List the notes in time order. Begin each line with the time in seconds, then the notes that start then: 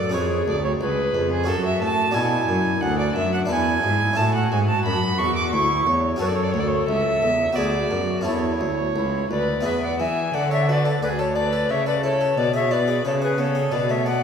Already playing: F#2 A4 D5
0.09 C#4 G#4 B4
0.13 F2 G#4 A4 C#5
0.47 D2 D5
0.65 C#5
0.81 C#2 G#4 B4
1.14 F2
1.32 G#4
1.44 C#4 F#4 A4
1.48 F#2 F#4 A4
1.66 E5
1.82 A2 A5
2.11 B2 D4 F#4 A4 G#5
2.16 B2 E4
2.48 F#2
2.81 D2 D4 F#5
2.99 D5
3.15 F#2 E5
3.34 F#5
3.46 E2 D4 E4 B4
3.50 E2 E4 G#5
3.83 G#2 F#4
3.90 E4
4.13 C#4 E4 A4 A5
4.18 A2 F#4
4.35 F#5
4.52 G#2 G#5
4.68 A5
4.85 F#2 B5
5.19 E2 C#6
5.36 D6
5.52 D2 E4 C#6
5.87 E2 C#5
6.16 C#4 F#4 A4
6.21 F#2 B4 C#5
6.26 A4 D5
6.36 C#5
6.44 D5
6.52 D2 C#5
6.60 D5
6.68 C#5
6.88 C#2 E5
7.22 E2
7.53 B3 F#4 B4 D5
7.57 D2 G#4
7.91 F#2 F#4
8.21 C#4 E4 A4
8.26 E2 E4 C#5
8.61 D2
8.96 C#2 E4
9.31 D2 B4 D5
9.61 B3 E4 G#4
9.65 E2 B4 E5
9.83 D5 F#5
9.99 E3 E5 G#5
10.34 D3 D5 F#5
10.51 A4 C#5 E5
10.68 F#4 B4 E5
10.72 D5
10.85 A4
11.03 D2 G#4 B4 D5
11.19 A4 C#5
11.35 D4 B4 D5
11.53 A4
11.70 C#3 C#5 E5
11.86 A4 B4 D5
12.03 E4 A4 C#5
12.21 A4
12.38 B2 B4 D5
12.54 G#4 C#5 E5
12.71 E4 B4 D5
12.88 G#4
13.05 C#3 A4 B4 C#5
13.22 G#4 B4
13.38 B3 A4 C#5
13.55 G#4
13.72 B2 B3 B4 D5
13.89 A3 C#5 E5
14.06 B3 D5 F#5